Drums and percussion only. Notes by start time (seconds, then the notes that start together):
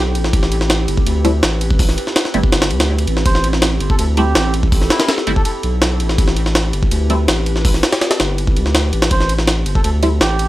0.15 ride
0.24 snare
0.33 kick, ride
0.43 snare
0.52 ride
0.61 snare
0.70 snare, ride
0.88 ride
0.97 kick
1.06 ride
1.25 ride
1.43 snare, ride
1.61 ride
1.70 kick
1.79 kick, open hi-hat
1.89 snare
1.98 ride
2.07 snare
2.16 snare, ride
2.25 snare
2.34 ride
2.44 kick
2.52 snare, ride
2.62 snare, ride
2.71 ride
2.80 snare, ride
2.98 ride
3.07 ride
3.17 snare
3.26 kick, ride
3.35 snare
3.44 ride
3.53 snare
3.62 snare, ride
3.80 ride
3.90 kick
3.99 ride
4.17 ride
4.35 snare, ride
4.54 ride
4.63 kick
4.72 kick, open hi-hat
4.81 snare
4.90 snare, ride
5.00 snare, ride
5.08 snare, ride
5.18 snare
5.27 ride
5.36 kick
5.45 ride
5.63 ride
5.82 snare, ride
6.00 ride
6.09 snare
6.18 kick, ride
6.28 snare
6.37 ride
6.46 snare
6.55 snare, ride
6.73 ride
6.83 kick
6.91 ride
7.10 ride
7.28 snare, ride
7.46 ride
7.56 snare
7.65 kick, open hi-hat
7.74 snare
7.83 snare, ride
7.93 snare, ride
8.01 snare, ride
8.11 snare, ride
8.20 snare, ride
8.38 ride
8.47 kick
8.56 ride
8.66 snare
8.75 snare, ride
8.93 ride
9.02 snare, ride
9.11 kick, ride
9.20 snare
9.29 ride
9.39 snare
9.48 snare, ride
9.66 ride
9.75 kick
9.84 ride
10.03 ride
10.21 snare, ride
10.39 ride